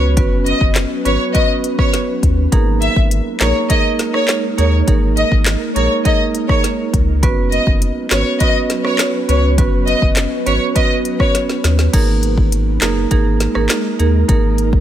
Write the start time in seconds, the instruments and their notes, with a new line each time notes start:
Already playing: sub bass C#2, ambient pad F#3 C#4 B4
0.17 sub bass F#1, marimba B3 C#4 F#4 B4, kick, closed hi-hat
0.46 violin section D#5, closed hi-hat
0.61 sub bass F#1, kick
0.75 snare, clap, closed hi-hat
1.05 sub bass G#1, marimba B3 C#4 F#4 B4, violin section C#5, closed hi-hat
1.35 marimba B3 C#4 F#4 B4, violin section D#5, kick, closed hi-hat
1.64 closed hi-hat
1.79 marimba B3 C#4 F#4 B4, violin section C#5, kick, cross-stick
1.93 snare, closed hi-hat
2.23 sub bass D#2, kick, closed hi-hat
2.52 sub bass G#1, ambient pad G#3 D#4 A#4, marimba A#3 D#4 G#4 A#4, kick, closed hi-hat
2.82 violin section E5, closed hi-hat
2.96 sub bass G#1, kick
3.11 closed hi-hat
3.40 sub bass A#1, marimba A#3 D#4 G#4 A#4, violin section C#5, snare, clap, closed hi-hat
3.70 marimba A#3 D#4 G#4 A#4, violin section D#5, kick, closed hi-hat
3.99 snare, closed hi-hat
4.14 marimba A#3 D#4 G#4 A#4, violin section C#5, cross-stick
4.28 snare, clap, closed hi-hat
4.58 sub bass D#2, marimba A#3 D#4 G#4 A#4, violin section C#5, closed hi-hat
4.87 sub bass G#1, marimba A#3 D#4 G#4 A#4, kick, closed hi-hat
5.17 violin section D#5, closed hi-hat
5.32 sub bass G#1, kick
5.46 snare, clap, closed hi-hat
5.76 sub bass A#1, marimba A#3 D#4 G#4 A#4, violin section C#5, closed hi-hat
6.05 marimba A#3 D#4 G#4 A#4, violin section D#5, kick, closed hi-hat
6.35 closed hi-hat
6.49 marimba A#3 D#4 G#4 A#4, violin section C#5, kick, cross-stick
6.64 snare, closed hi-hat
6.94 sub bass C#2, kick, closed hi-hat
7.23 sub bass F#1, ambient pad F#3 C#4 B4, marimba B3 C#4 F#4 B4, kick, closed hi-hat
7.52 violin section D#5, closed hi-hat
7.67 sub bass F#1, kick
7.82 closed hi-hat
8.11 sub bass G#1, marimba B3 C#4 F#4 B4, violin section C#5, snare, clap, closed hi-hat
8.40 marimba B3 C#4 F#4 B4, violin section D#5, kick, closed hi-hat
8.70 snare, closed hi-hat
8.84 marimba B3 C#4 F#4 B4, violin section C#5, cross-stick
8.99 snare, clap, closed hi-hat
9.29 sub bass C#2, marimba B3 C#4 F#4 B4, violin section C#5, closed hi-hat
9.58 sub bass F#1, marimba B3 C#4 F#4 B4, kick, closed hi-hat
9.87 violin section D#5, closed hi-hat
10.02 sub bass F#1, kick
10.17 snare, clap, closed hi-hat
10.46 sub bass G#1, marimba B3 C#4 F#4 B4, violin section C#5, closed hi-hat
10.75 marimba B3 C#4 F#4 B4, violin section D#5, kick, closed hi-hat
11.05 closed hi-hat
11.20 marimba B3 C#4 F#4 B4, violin section C#5, kick, cross-stick
11.35 snare, closed hi-hat
11.49 snare
11.64 sub bass D#2, snare, closed hi-hat
11.79 snare
11.93 sub bass G#1, ambient pad G#3 D#4 A#4, marimba A#3 D#4 G#4 A#4, kick, closed hi-hat, crash
12.23 closed hi-hat
12.38 kick
12.52 closed hi-hat
12.82 sub bass F#1, marimba A#3 D#4 G#4 A#4, snare, clap, closed hi-hat
13.11 sub bass G#1, marimba A#3 D#4 G#4 A#4, kick, closed hi-hat
13.40 snare, closed hi-hat
13.55 sub bass G#1, marimba A#3 D#4 G#4 A#4, cross-stick
13.69 snare, clap, closed hi-hat
13.99 sub bass D#2, marimba A#3 D#4 G#4 A#4, closed hi-hat
14.28 sub bass G#1, marimba A#3 D#4 G#4 A#4, kick, closed hi-hat
14.58 closed hi-hat
14.73 kick